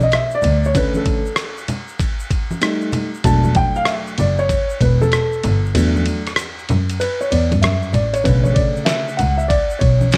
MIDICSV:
0, 0, Header, 1, 4, 480
1, 0, Start_track
1, 0, Key_signature, 2, "minor"
1, 0, Tempo, 625000
1, 576, Time_signature, 4, 2, 24, 8
1, 7814, End_track
2, 0, Start_track
2, 0, Title_t, "Upright piano"
2, 0, Program_c, 0, 0
2, 0, Note_on_c, 0, 57, 39
2, 0, Note_on_c, 0, 59, 53
2, 0, Note_on_c, 0, 62, 45
2, 24, Note_on_c, 0, 75, 90
2, 105, Note_off_c, 0, 75, 0
2, 111, Note_on_c, 0, 76, 79
2, 264, Note_off_c, 0, 76, 0
2, 267, Note_on_c, 0, 74, 94
2, 506, Note_off_c, 0, 74, 0
2, 506, Note_on_c, 0, 73, 84
2, 542, Note_off_c, 0, 62, 0
2, 546, Note_off_c, 0, 57, 0
2, 548, Note_off_c, 0, 59, 0
2, 575, Note_on_c, 0, 50, 51
2, 580, Note_on_c, 0, 57, 44
2, 585, Note_on_c, 0, 61, 48
2, 586, Note_off_c, 0, 73, 0
2, 591, Note_on_c, 0, 71, 83
2, 743, Note_on_c, 0, 69, 72
2, 744, Note_off_c, 0, 71, 0
2, 922, Note_off_c, 0, 50, 0
2, 925, Note_off_c, 0, 57, 0
2, 927, Note_off_c, 0, 61, 0
2, 1187, Note_off_c, 0, 69, 0
2, 2005, Note_on_c, 0, 55, 43
2, 2008, Note_on_c, 0, 57, 46
2, 2016, Note_on_c, 0, 63, 51
2, 2357, Note_off_c, 0, 55, 0
2, 2358, Note_off_c, 0, 57, 0
2, 2362, Note_off_c, 0, 63, 0
2, 2489, Note_on_c, 0, 54, 46
2, 2496, Note_on_c, 0, 57, 48
2, 2496, Note_on_c, 0, 81, 89
2, 2497, Note_on_c, 0, 62, 52
2, 2736, Note_on_c, 0, 79, 102
2, 2743, Note_off_c, 0, 81, 0
2, 2889, Note_on_c, 0, 77, 94
2, 2897, Note_off_c, 0, 79, 0
2, 2969, Note_off_c, 0, 77, 0
2, 2974, Note_on_c, 0, 76, 81
2, 3029, Note_off_c, 0, 76, 0
2, 3182, Note_off_c, 0, 54, 0
2, 3185, Note_off_c, 0, 57, 0
2, 3186, Note_off_c, 0, 62, 0
2, 3219, Note_on_c, 0, 74, 80
2, 3370, Note_on_c, 0, 73, 99
2, 3378, Note_off_c, 0, 74, 0
2, 3673, Note_off_c, 0, 73, 0
2, 3702, Note_on_c, 0, 71, 72
2, 3851, Note_on_c, 0, 69, 95
2, 3859, Note_off_c, 0, 71, 0
2, 4301, Note_off_c, 0, 69, 0
2, 4410, Note_on_c, 0, 54, 49
2, 4413, Note_on_c, 0, 57, 47
2, 4418, Note_on_c, 0, 62, 56
2, 4759, Note_off_c, 0, 54, 0
2, 4761, Note_off_c, 0, 57, 0
2, 4763, Note_off_c, 0, 62, 0
2, 5374, Note_on_c, 0, 71, 82
2, 5520, Note_off_c, 0, 71, 0
2, 5535, Note_on_c, 0, 73, 79
2, 5610, Note_on_c, 0, 74, 74
2, 5620, Note_off_c, 0, 73, 0
2, 5849, Note_on_c, 0, 76, 68
2, 5861, Note_off_c, 0, 74, 0
2, 6087, Note_on_c, 0, 74, 73
2, 6100, Note_off_c, 0, 76, 0
2, 6247, Note_on_c, 0, 73, 82
2, 6252, Note_off_c, 0, 74, 0
2, 6326, Note_on_c, 0, 50, 47
2, 6329, Note_on_c, 0, 71, 73
2, 6332, Note_on_c, 0, 57, 44
2, 6336, Note_off_c, 0, 73, 0
2, 6337, Note_on_c, 0, 49, 58
2, 6478, Note_on_c, 0, 73, 72
2, 6493, Note_off_c, 0, 71, 0
2, 6557, Note_on_c, 0, 74, 82
2, 6572, Note_off_c, 0, 73, 0
2, 6789, Note_off_c, 0, 74, 0
2, 6798, Note_on_c, 0, 76, 88
2, 7020, Note_off_c, 0, 50, 0
2, 7023, Note_off_c, 0, 57, 0
2, 7026, Note_off_c, 0, 49, 0
2, 7043, Note_on_c, 0, 78, 85
2, 7055, Note_off_c, 0, 76, 0
2, 7199, Note_on_c, 0, 76, 84
2, 7210, Note_off_c, 0, 78, 0
2, 7282, Note_on_c, 0, 74, 88
2, 7293, Note_off_c, 0, 76, 0
2, 7519, Note_on_c, 0, 73, 84
2, 7537, Note_off_c, 0, 74, 0
2, 7814, Note_off_c, 0, 73, 0
2, 7814, End_track
3, 0, Start_track
3, 0, Title_t, "Double bass"
3, 0, Program_c, 1, 43
3, 340, Note_on_c, 1, 38, 91
3, 465, Note_off_c, 1, 38, 0
3, 2492, Note_on_c, 1, 28, 92
3, 2689, Note_off_c, 1, 28, 0
3, 3212, Note_on_c, 1, 30, 84
3, 3409, Note_off_c, 1, 30, 0
3, 3692, Note_on_c, 1, 28, 99
3, 3889, Note_off_c, 1, 28, 0
3, 4177, Note_on_c, 1, 31, 91
3, 4303, Note_off_c, 1, 31, 0
3, 4413, Note_on_c, 1, 40, 97
3, 4610, Note_off_c, 1, 40, 0
3, 5142, Note_on_c, 1, 42, 82
3, 5335, Note_off_c, 1, 42, 0
3, 5619, Note_on_c, 1, 40, 95
3, 5744, Note_off_c, 1, 40, 0
3, 5773, Note_on_c, 1, 43, 77
3, 5841, Note_off_c, 1, 43, 0
3, 5856, Note_on_c, 1, 42, 87
3, 6052, Note_off_c, 1, 42, 0
3, 6094, Note_on_c, 1, 33, 78
3, 6290, Note_off_c, 1, 33, 0
3, 6337, Note_on_c, 1, 35, 96
3, 6532, Note_off_c, 1, 35, 0
3, 7062, Note_on_c, 1, 37, 80
3, 7255, Note_off_c, 1, 37, 0
3, 7536, Note_on_c, 1, 35, 91
3, 7731, Note_off_c, 1, 35, 0
3, 7814, End_track
4, 0, Start_track
4, 0, Title_t, "Drums"
4, 5, Note_on_c, 9, 63, 57
4, 5, Note_on_c, 9, 82, 38
4, 81, Note_off_c, 9, 63, 0
4, 81, Note_off_c, 9, 82, 0
4, 86, Note_on_c, 9, 82, 55
4, 92, Note_on_c, 9, 44, 46
4, 92, Note_on_c, 9, 51, 59
4, 102, Note_on_c, 9, 37, 105
4, 163, Note_off_c, 9, 82, 0
4, 169, Note_off_c, 9, 44, 0
4, 169, Note_off_c, 9, 51, 0
4, 179, Note_off_c, 9, 37, 0
4, 235, Note_on_c, 9, 82, 37
4, 312, Note_off_c, 9, 82, 0
4, 323, Note_on_c, 9, 64, 63
4, 323, Note_on_c, 9, 82, 48
4, 337, Note_on_c, 9, 51, 60
4, 400, Note_off_c, 9, 64, 0
4, 400, Note_off_c, 9, 82, 0
4, 413, Note_off_c, 9, 51, 0
4, 491, Note_on_c, 9, 82, 43
4, 568, Note_off_c, 9, 82, 0
4, 573, Note_on_c, 9, 82, 65
4, 575, Note_on_c, 9, 36, 101
4, 577, Note_on_c, 9, 51, 83
4, 650, Note_off_c, 9, 82, 0
4, 652, Note_off_c, 9, 36, 0
4, 654, Note_off_c, 9, 51, 0
4, 723, Note_on_c, 9, 63, 57
4, 723, Note_on_c, 9, 82, 45
4, 800, Note_off_c, 9, 63, 0
4, 800, Note_off_c, 9, 82, 0
4, 810, Note_on_c, 9, 63, 40
4, 810, Note_on_c, 9, 82, 46
4, 811, Note_on_c, 9, 51, 63
4, 812, Note_on_c, 9, 36, 93
4, 887, Note_off_c, 9, 63, 0
4, 887, Note_off_c, 9, 82, 0
4, 888, Note_off_c, 9, 51, 0
4, 889, Note_off_c, 9, 36, 0
4, 966, Note_on_c, 9, 82, 38
4, 1043, Note_off_c, 9, 82, 0
4, 1045, Note_on_c, 9, 37, 119
4, 1051, Note_on_c, 9, 44, 56
4, 1051, Note_on_c, 9, 51, 69
4, 1053, Note_on_c, 9, 82, 72
4, 1122, Note_off_c, 9, 37, 0
4, 1128, Note_off_c, 9, 44, 0
4, 1128, Note_off_c, 9, 51, 0
4, 1130, Note_off_c, 9, 82, 0
4, 1208, Note_on_c, 9, 82, 46
4, 1285, Note_off_c, 9, 82, 0
4, 1292, Note_on_c, 9, 51, 59
4, 1293, Note_on_c, 9, 64, 64
4, 1293, Note_on_c, 9, 82, 51
4, 1369, Note_off_c, 9, 51, 0
4, 1370, Note_off_c, 9, 64, 0
4, 1370, Note_off_c, 9, 82, 0
4, 1444, Note_on_c, 9, 82, 45
4, 1520, Note_off_c, 9, 82, 0
4, 1531, Note_on_c, 9, 82, 48
4, 1532, Note_on_c, 9, 36, 88
4, 1538, Note_on_c, 9, 51, 64
4, 1608, Note_off_c, 9, 82, 0
4, 1609, Note_off_c, 9, 36, 0
4, 1615, Note_off_c, 9, 51, 0
4, 1686, Note_on_c, 9, 82, 51
4, 1763, Note_off_c, 9, 82, 0
4, 1770, Note_on_c, 9, 36, 81
4, 1771, Note_on_c, 9, 82, 38
4, 1773, Note_on_c, 9, 51, 61
4, 1847, Note_off_c, 9, 36, 0
4, 1847, Note_off_c, 9, 82, 0
4, 1849, Note_off_c, 9, 51, 0
4, 1925, Note_on_c, 9, 63, 57
4, 1925, Note_on_c, 9, 82, 43
4, 2001, Note_off_c, 9, 63, 0
4, 2001, Note_off_c, 9, 82, 0
4, 2008, Note_on_c, 9, 82, 46
4, 2009, Note_on_c, 9, 44, 51
4, 2009, Note_on_c, 9, 51, 64
4, 2019, Note_on_c, 9, 37, 105
4, 2085, Note_off_c, 9, 82, 0
4, 2086, Note_off_c, 9, 44, 0
4, 2086, Note_off_c, 9, 51, 0
4, 2096, Note_off_c, 9, 37, 0
4, 2160, Note_on_c, 9, 82, 33
4, 2237, Note_off_c, 9, 82, 0
4, 2246, Note_on_c, 9, 64, 70
4, 2246, Note_on_c, 9, 82, 44
4, 2251, Note_on_c, 9, 51, 53
4, 2323, Note_off_c, 9, 64, 0
4, 2323, Note_off_c, 9, 82, 0
4, 2328, Note_off_c, 9, 51, 0
4, 2413, Note_on_c, 9, 82, 43
4, 2489, Note_on_c, 9, 51, 84
4, 2490, Note_off_c, 9, 82, 0
4, 2491, Note_on_c, 9, 36, 105
4, 2502, Note_on_c, 9, 82, 66
4, 2566, Note_off_c, 9, 51, 0
4, 2567, Note_off_c, 9, 36, 0
4, 2578, Note_off_c, 9, 82, 0
4, 2639, Note_on_c, 9, 63, 57
4, 2639, Note_on_c, 9, 82, 45
4, 2715, Note_off_c, 9, 63, 0
4, 2715, Note_off_c, 9, 82, 0
4, 2724, Note_on_c, 9, 51, 59
4, 2728, Note_on_c, 9, 36, 91
4, 2728, Note_on_c, 9, 63, 39
4, 2728, Note_on_c, 9, 82, 42
4, 2801, Note_off_c, 9, 51, 0
4, 2805, Note_off_c, 9, 36, 0
4, 2805, Note_off_c, 9, 63, 0
4, 2805, Note_off_c, 9, 82, 0
4, 2882, Note_on_c, 9, 82, 39
4, 2959, Note_off_c, 9, 82, 0
4, 2960, Note_on_c, 9, 37, 110
4, 2966, Note_on_c, 9, 44, 51
4, 2966, Note_on_c, 9, 51, 72
4, 2973, Note_on_c, 9, 82, 65
4, 3037, Note_off_c, 9, 37, 0
4, 3043, Note_off_c, 9, 44, 0
4, 3043, Note_off_c, 9, 51, 0
4, 3050, Note_off_c, 9, 82, 0
4, 3126, Note_on_c, 9, 82, 42
4, 3203, Note_off_c, 9, 82, 0
4, 3208, Note_on_c, 9, 51, 64
4, 3216, Note_on_c, 9, 64, 62
4, 3216, Note_on_c, 9, 82, 51
4, 3285, Note_off_c, 9, 51, 0
4, 3293, Note_off_c, 9, 64, 0
4, 3293, Note_off_c, 9, 82, 0
4, 3365, Note_on_c, 9, 82, 44
4, 3442, Note_off_c, 9, 82, 0
4, 3451, Note_on_c, 9, 36, 86
4, 3453, Note_on_c, 9, 51, 64
4, 3455, Note_on_c, 9, 82, 52
4, 3528, Note_off_c, 9, 36, 0
4, 3530, Note_off_c, 9, 51, 0
4, 3532, Note_off_c, 9, 82, 0
4, 3608, Note_on_c, 9, 82, 47
4, 3685, Note_off_c, 9, 82, 0
4, 3691, Note_on_c, 9, 36, 83
4, 3694, Note_on_c, 9, 51, 70
4, 3695, Note_on_c, 9, 82, 39
4, 3768, Note_off_c, 9, 36, 0
4, 3771, Note_off_c, 9, 51, 0
4, 3772, Note_off_c, 9, 82, 0
4, 3855, Note_on_c, 9, 63, 56
4, 3855, Note_on_c, 9, 82, 45
4, 3930, Note_on_c, 9, 44, 47
4, 3930, Note_on_c, 9, 51, 62
4, 3932, Note_off_c, 9, 63, 0
4, 3932, Note_off_c, 9, 82, 0
4, 3938, Note_on_c, 9, 82, 59
4, 3940, Note_on_c, 9, 37, 110
4, 4007, Note_off_c, 9, 44, 0
4, 4007, Note_off_c, 9, 51, 0
4, 4015, Note_off_c, 9, 82, 0
4, 4017, Note_off_c, 9, 37, 0
4, 4090, Note_on_c, 9, 82, 41
4, 4167, Note_off_c, 9, 82, 0
4, 4174, Note_on_c, 9, 51, 60
4, 4178, Note_on_c, 9, 64, 67
4, 4178, Note_on_c, 9, 82, 48
4, 4251, Note_off_c, 9, 51, 0
4, 4255, Note_off_c, 9, 64, 0
4, 4255, Note_off_c, 9, 82, 0
4, 4345, Note_on_c, 9, 82, 45
4, 4415, Note_on_c, 9, 51, 90
4, 4422, Note_off_c, 9, 82, 0
4, 4432, Note_on_c, 9, 82, 67
4, 4492, Note_off_c, 9, 51, 0
4, 4509, Note_off_c, 9, 82, 0
4, 4577, Note_on_c, 9, 63, 55
4, 4577, Note_on_c, 9, 82, 44
4, 4651, Note_on_c, 9, 51, 60
4, 4654, Note_off_c, 9, 63, 0
4, 4654, Note_off_c, 9, 82, 0
4, 4663, Note_on_c, 9, 82, 41
4, 4728, Note_off_c, 9, 51, 0
4, 4740, Note_off_c, 9, 82, 0
4, 4813, Note_on_c, 9, 51, 49
4, 4815, Note_on_c, 9, 82, 39
4, 4818, Note_on_c, 9, 37, 34
4, 4886, Note_off_c, 9, 37, 0
4, 4886, Note_on_c, 9, 37, 120
4, 4890, Note_off_c, 9, 51, 0
4, 4892, Note_off_c, 9, 82, 0
4, 4893, Note_on_c, 9, 44, 53
4, 4893, Note_on_c, 9, 51, 70
4, 4900, Note_on_c, 9, 82, 70
4, 4963, Note_off_c, 9, 37, 0
4, 4969, Note_off_c, 9, 44, 0
4, 4969, Note_off_c, 9, 51, 0
4, 4977, Note_off_c, 9, 82, 0
4, 5059, Note_on_c, 9, 82, 39
4, 5136, Note_off_c, 9, 82, 0
4, 5136, Note_on_c, 9, 51, 63
4, 5145, Note_on_c, 9, 64, 70
4, 5145, Note_on_c, 9, 82, 44
4, 5213, Note_off_c, 9, 51, 0
4, 5222, Note_off_c, 9, 64, 0
4, 5222, Note_off_c, 9, 82, 0
4, 5294, Note_on_c, 9, 82, 45
4, 5296, Note_on_c, 9, 51, 43
4, 5371, Note_off_c, 9, 82, 0
4, 5373, Note_off_c, 9, 51, 0
4, 5380, Note_on_c, 9, 82, 56
4, 5385, Note_on_c, 9, 51, 64
4, 5456, Note_off_c, 9, 82, 0
4, 5462, Note_off_c, 9, 51, 0
4, 5536, Note_on_c, 9, 82, 53
4, 5613, Note_off_c, 9, 82, 0
4, 5619, Note_on_c, 9, 82, 41
4, 5622, Note_on_c, 9, 51, 69
4, 5696, Note_off_c, 9, 82, 0
4, 5699, Note_off_c, 9, 51, 0
4, 5772, Note_on_c, 9, 63, 66
4, 5772, Note_on_c, 9, 82, 46
4, 5775, Note_on_c, 9, 51, 41
4, 5849, Note_off_c, 9, 63, 0
4, 5849, Note_off_c, 9, 82, 0
4, 5852, Note_off_c, 9, 51, 0
4, 5855, Note_on_c, 9, 82, 53
4, 5858, Note_on_c, 9, 44, 47
4, 5858, Note_on_c, 9, 51, 65
4, 5868, Note_on_c, 9, 37, 106
4, 5932, Note_off_c, 9, 82, 0
4, 5934, Note_off_c, 9, 44, 0
4, 5934, Note_off_c, 9, 51, 0
4, 5944, Note_off_c, 9, 37, 0
4, 6009, Note_on_c, 9, 82, 35
4, 6085, Note_off_c, 9, 82, 0
4, 6094, Note_on_c, 9, 64, 65
4, 6094, Note_on_c, 9, 82, 50
4, 6099, Note_on_c, 9, 51, 60
4, 6170, Note_off_c, 9, 64, 0
4, 6170, Note_off_c, 9, 82, 0
4, 6176, Note_off_c, 9, 51, 0
4, 6250, Note_on_c, 9, 51, 40
4, 6257, Note_on_c, 9, 82, 45
4, 6326, Note_off_c, 9, 51, 0
4, 6334, Note_off_c, 9, 82, 0
4, 6338, Note_on_c, 9, 36, 107
4, 6341, Note_on_c, 9, 51, 82
4, 6349, Note_on_c, 9, 82, 68
4, 6415, Note_off_c, 9, 36, 0
4, 6417, Note_off_c, 9, 51, 0
4, 6426, Note_off_c, 9, 82, 0
4, 6490, Note_on_c, 9, 63, 61
4, 6490, Note_on_c, 9, 82, 44
4, 6567, Note_off_c, 9, 63, 0
4, 6567, Note_off_c, 9, 82, 0
4, 6573, Note_on_c, 9, 51, 65
4, 6573, Note_on_c, 9, 63, 41
4, 6573, Note_on_c, 9, 82, 38
4, 6576, Note_on_c, 9, 36, 81
4, 6650, Note_off_c, 9, 51, 0
4, 6650, Note_off_c, 9, 63, 0
4, 6650, Note_off_c, 9, 82, 0
4, 6653, Note_off_c, 9, 36, 0
4, 6730, Note_on_c, 9, 82, 36
4, 6807, Note_off_c, 9, 82, 0
4, 6807, Note_on_c, 9, 38, 113
4, 6813, Note_on_c, 9, 44, 53
4, 6813, Note_on_c, 9, 51, 72
4, 6820, Note_on_c, 9, 82, 69
4, 6884, Note_off_c, 9, 38, 0
4, 6890, Note_off_c, 9, 44, 0
4, 6890, Note_off_c, 9, 51, 0
4, 6897, Note_off_c, 9, 82, 0
4, 6975, Note_on_c, 9, 82, 45
4, 7052, Note_off_c, 9, 82, 0
4, 7056, Note_on_c, 9, 51, 59
4, 7060, Note_on_c, 9, 64, 69
4, 7060, Note_on_c, 9, 82, 55
4, 7133, Note_off_c, 9, 51, 0
4, 7136, Note_off_c, 9, 64, 0
4, 7136, Note_off_c, 9, 82, 0
4, 7213, Note_on_c, 9, 82, 48
4, 7290, Note_off_c, 9, 82, 0
4, 7296, Note_on_c, 9, 36, 85
4, 7297, Note_on_c, 9, 82, 50
4, 7299, Note_on_c, 9, 51, 70
4, 7373, Note_off_c, 9, 36, 0
4, 7374, Note_off_c, 9, 82, 0
4, 7376, Note_off_c, 9, 51, 0
4, 7449, Note_on_c, 9, 82, 50
4, 7526, Note_off_c, 9, 82, 0
4, 7530, Note_on_c, 9, 82, 39
4, 7536, Note_on_c, 9, 36, 80
4, 7536, Note_on_c, 9, 51, 66
4, 7607, Note_off_c, 9, 82, 0
4, 7613, Note_off_c, 9, 36, 0
4, 7613, Note_off_c, 9, 51, 0
4, 7687, Note_on_c, 9, 63, 56
4, 7687, Note_on_c, 9, 82, 40
4, 7764, Note_off_c, 9, 63, 0
4, 7764, Note_off_c, 9, 82, 0
4, 7770, Note_on_c, 9, 82, 57
4, 7775, Note_on_c, 9, 44, 48
4, 7775, Note_on_c, 9, 51, 71
4, 7785, Note_on_c, 9, 38, 104
4, 7814, Note_off_c, 9, 38, 0
4, 7814, Note_off_c, 9, 44, 0
4, 7814, Note_off_c, 9, 51, 0
4, 7814, Note_off_c, 9, 82, 0
4, 7814, End_track
0, 0, End_of_file